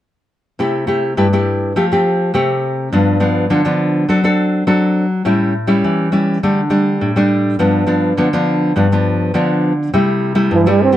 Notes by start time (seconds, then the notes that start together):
0.59 C3 A3 E4 G4
0.87 A3 E4 G4
1.17 G2 A3 E4 G4
1.33 A3 E4 G4
1.76 F3 A3 C4 G4
1.92 A3 C4 G4
2.34 C3 A3 C4 G4
2.92 G2 F3 B3 D4
3.20 F3 B3 D4
3.50 D3 F3 B3 D4
3.65 F3 B3 D4
4.09 F#3 C4 D4 A4
4.24 C4 D4 A4
4.67 F#3 C4 D4 A4
5.25 A2 G3 C#4 E4
5.67 G3 C#4 E4
5.84 E3
6.12 G3 C#4 E4
6.43 D3 G3 A3 D4
6.70 G3 A3 D4
7.01 A2
7.16 G3 A3 D4
7.59 G2 F3 B3 D4
7.86 F3 B3 D4
8.17 D3 F3 B3 D4
8.33 F3 B3 D4
8.76 G2 F3 B3 D4
8.92 F3 B3 D4
9.34 D3 F3 B3 D4
9.94 C3 G3 A3 E4
10.35 G3 A3 E4
10.51 G2 E3
10.66 G3 A3 E4
10.81 C4
10.92 A3 G4